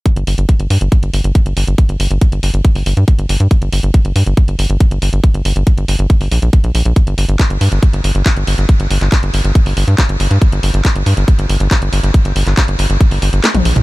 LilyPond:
<<
  \new Staff \with { instrumentName = "Analog synth bass" } { \clef bass \time 4/4 \key g \minor \tempo 4 = 139 r16 g,,16 g,,16 g,,16 r16 g,,16 g,16 g,,16 r16 g,,16 g,,16 g,,16 r16 g,,16 g,,16 g,,16 | r16 g,,16 g,,16 g,,16 r16 g,,16 g,,16 g,,16 r16 g,,16 g,,16 g,16 r16 g,,16 g,,16 g,16 | r16 g,,16 g,,16 g,,16 r16 g,,16 g,16 g,,16 r16 g,,16 g,,16 g,,16 r16 g,,16 g,,16 g,,16 | r16 g,,16 g,,16 g,,16 r16 g,,16 g,,16 g,,16 r16 g,,16 bes,,16 bes,,16 r16 bes,,16 bes,,16 bes,,16 |
r16 g,,16 g,,16 g,,16 r16 g,,16 g,16 g,,16 r16 g,,16 g,,16 g,,16 r16 g,,16 g,,16 g,,16 | r16 g,,16 g,,16 g,,16 r16 g,,16 g,,16 g,,16 r16 g,,16 g,,16 g,16 r16 g,,16 g,,16 g,16 | r16 g,,16 g,,16 g,,16 r16 g,,16 g,16 g,,16 r16 g,,16 g,,16 g,,16 r16 g,,16 g,,16 g,,16 | r16 g,,16 g,,16 g,,16 r16 g,,16 g,,16 g,,16 r16 g,,16 g,,16 g,,16 r16 bes,,16 bes,,16 bes,,16 | }
  \new DrumStaff \with { instrumentName = "Drums" } \drummode { \time 4/4 <hh bd>16 hh16 hho16 hh16 <hh bd>16 hh16 hho16 hh16 <hh bd>16 hh16 hho16 hh16 <hh bd>16 hh16 hho16 hh16 | <hh bd>16 hh16 hho16 hh16 <hh bd>16 hh16 hho16 hh16 <hh bd>16 hho16 hho16 hh16 <hh bd>16 hh16 hho16 hh16 | <hh bd>16 hh16 hho16 hh16 <hh bd>16 hh16 hho16 hh16 <hh bd>16 hh16 hho16 hh16 <hh bd>16 hh16 hho16 hh16 | <hh bd>16 hh16 hho16 hh16 <hh bd>16 hh16 hho16 hh16 <hh bd>16 hho16 hho16 hh16 <hh bd>16 hh16 hho16 hh16 |
<hh bd>16 hh16 hho16 hh16 <hc hh bd>16 hh16 hho16 hh16 <hh bd>16 hh16 hho16 hh16 <hc hh bd>16 hh16 hho16 hh16 | <hh bd>16 hh16 hho16 <hc hh>16 <hc hh bd>16 hh16 hho16 hh16 <hh bd>16 hho16 hho16 hh16 <hc hh bd>16 hh16 hho16 hh16 | <hh bd>16 hh16 hho16 hh16 <hc hh bd>16 hh16 hho16 hh16 <hh bd>16 hh16 hho16 hh16 <hc hh bd>16 hh16 hho16 hh16 | <hh bd>16 hh16 hho16 <hc hh>16 <hc hh bd>16 hh16 hho16 hh16 <hh bd>16 hho16 hho16 hh16 <hc hh sn>16 <hh tommh>16 hho16 <hh toml>16 | }
>>